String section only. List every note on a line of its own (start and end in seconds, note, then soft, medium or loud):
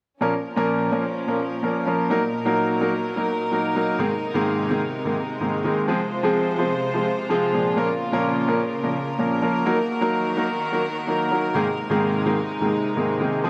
0.21 3.96 A#2 medium
0.21 2.08 F3 medium
0.21 2.08 C#4 medium
0.21 5.84 A#4 medium
2.10 3.97 F#3 medium
2.10 5.85 D#4 medium
3.99 5.86 C3 medium
3.99 7.74 G#3 medium
5.88 7.75 C3 medium
5.88 9.62 F4 medium
5.88 7.75 C5 medium
7.77 9.64 C#3 medium
7.77 11.52 A#3 medium
7.77 13.40 A#4 medium
9.66 11.53 D#3 medium
9.66 11.53 F#4 medium
11.55 13.50 C3 medium
11.55 13.50 G#3 medium
11.55 13.42 D#4 medium
13.44 13.50 F4 medium
13.44 13.50 C5 medium